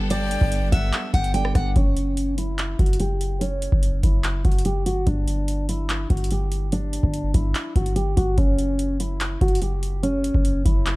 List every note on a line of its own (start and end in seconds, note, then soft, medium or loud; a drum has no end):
0.00 0.38 G1 loud
0.00 1.30 G3 medium
0.00 1.72 G3 medium
0.00 1.30 B3 medium
0.00 1.72 B3 medium
0.00 1.31 D4 medium
0.00 1.72 D4 medium
0.00 1.32 A4 medium
0.00 1.72 A4 medium
0.00 1.32 D5 medium
0.10 0.69 D5 loud
0.10 0.69 G5 loud
0.10 closed hi-hat medium
0.31 closed hi-hat medium
0.41 0.71 G1 loud
0.41 kick medium
0.52 closed hi-hat medium
0.72 0.92 G1 loud
0.72 1.11 E5 medium
0.72 1.11 F#5 medium
0.72 kick loud
0.72 closed hi-hat medium
0.93 clap loud
0.93 closed hi-hat medium
1.14 1.53 G1 loud
1.14 1.33 F#5 medium
1.14 1.33 G5 medium
1.14 kick medium
1.14 closed hi-hat medium
1.24 closed hi-hat medium
1.33 1.75 G3 medium
1.33 1.76 B3 soft
1.33 1.76 D4 medium
1.33 1.76 A4 soft
1.33 1.77 D5 medium
1.33 1.54 G5 medium
1.33 closed hi-hat medium
1.45 cross-stick loud
1.55 1.75 G1 loud
1.55 1.74 F#5 medium
1.55 kick medium
1.55 cross-stick medium
1.55 closed hi-hat medium
1.76 2.75 F#1 loud
1.76 2.34 C#4 loud
1.76 kick loud
1.76 closed hi-hat medium
1.97 closed hi-hat medium
2.17 closed hi-hat medium
2.38 2.77 E4 medium
2.38 closed hi-hat medium
2.59 clap loud
2.59 closed hi-hat medium
2.79 3.69 F#1 loud
2.79 2.99 F#4 medium
2.79 kick medium
2.79 closed hi-hat soft
2.86 closed hi-hat medium
2.93 closed hi-hat medium
3.00 3.39 G4 medium
3.00 closed hi-hat medium
3.21 closed hi-hat medium
3.41 4.00 C#4 loud
3.41 closed hi-hat medium
3.62 closed hi-hat medium
3.72 4.02 F#1 loud
3.72 kick medium
3.83 closed hi-hat medium
4.03 4.43 F#1 loud
4.03 4.42 E4 medium
4.03 kick loud
4.03 closed hi-hat medium
4.24 clap loud
4.24 closed hi-hat medium
4.45 4.88 F#1 loud
4.45 4.64 F#4 medium
4.45 kick medium
4.45 closed hi-hat soft
4.52 closed hi-hat medium
4.58 closed hi-hat medium
4.65 4.85 G4 medium
4.65 closed hi-hat medium
4.86 5.06 G1 loud
4.86 5.05 F#4 medium
4.86 closed hi-hat medium
5.07 6.06 G1 loud
5.07 5.65 D4 medium
5.07 kick loud
5.07 closed hi-hat medium
5.28 closed hi-hat medium
5.48 closed hi-hat medium
5.69 6.08 E4 medium
5.69 closed hi-hat medium
5.89 clap loud
5.89 closed hi-hat medium
6.10 7.00 G1 loud
6.10 6.30 F#4 medium
6.10 kick medium
6.10 closed hi-hat soft
6.17 closed hi-hat medium
6.24 closed hi-hat medium
6.31 6.70 G4 medium
6.31 closed hi-hat medium
6.52 closed hi-hat medium
6.72 7.31 D4 loud
6.72 closed hi-hat medium
6.93 closed hi-hat medium
7.03 7.33 G1 loud
7.03 kick medium
7.14 closed hi-hat medium
7.34 7.54 G1 loud
7.34 7.73 E4 medium
7.34 kick loud
7.34 closed hi-hat medium
7.55 clap loud
7.55 closed hi-hat medium
7.76 8.15 G1 loud
7.76 7.95 F#4 medium
7.76 kick medium
7.76 closed hi-hat medium
7.86 closed hi-hat medium
7.96 8.15 G4 medium
7.96 closed hi-hat medium
8.17 8.37 G1 loud
8.17 8.36 F#4 medium
8.17 kick medium
8.17 closed hi-hat medium
8.38 9.37 F#1 loud
8.38 8.96 C#4 loud
8.38 kick loud
8.38 closed hi-hat medium
8.59 closed hi-hat medium
8.79 closed hi-hat medium
9.00 9.39 E4 medium
9.00 closed hi-hat medium
9.21 clap loud
9.21 closed hi-hat medium
9.41 10.31 F#1 loud
9.41 9.61 F#4 medium
9.41 kick medium
9.41 closed hi-hat soft
9.48 closed hi-hat medium
9.55 closed hi-hat medium
9.62 10.01 G4 medium
9.62 closed hi-hat medium
9.83 closed hi-hat medium
10.03 10.62 C#4 loud
10.03 closed hi-hat medium
10.24 closed hi-hat medium
10.34 10.64 F#1 loud
10.34 kick medium
10.45 closed hi-hat medium
10.65 10.96 F#1 loud
10.65 10.96 E4 medium
10.65 kick loud
10.65 closed hi-hat medium
10.86 clap loud
10.86 closed hi-hat medium